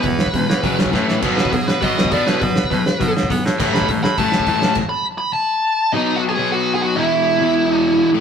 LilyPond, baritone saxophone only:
\new Staff \with { instrumentName = "Baritone saxophone" } { \clef bass \time 4/4 \key e \major \tempo 4 = 204 e,4 cis,8 e,8 fis,8 fis,8 a,8 e8 | b,8 b,8 b,8 b,8 b,8 b,8 b,8 a,8 | b,4 a,8 r8 b,8 b,8 b8 a,8 | a,8 a,8 a,8 a,8 a,8 a,8 a,8 fis,8 |
r1 | r1 | r1 | }